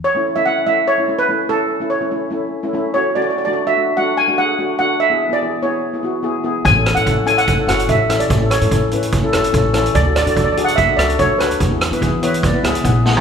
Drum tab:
HH |----------------|----------------|----------------|----------------|
SD |----------------|----------------|----------------|----------------|
FT |----------------|----------------|----------------|----------------|
BD |----------------|----------------|----------------|----------------|

HH |x-xxx-xxx-xxx-xx|x-xxx-xxx-xxx-xx|x-xxx-xxx-xxx-xx|x-xxx-xxx-xxx---|
SD |--r-------r---r-|--r-------r---r-|--r-------r---r-|--r-------r---o-|
FT |----------------|----------------|----------------|---------------o|
BD |o---o---o---o---|o---o---o---o---|o---o---o---o---|o---o---o---o---|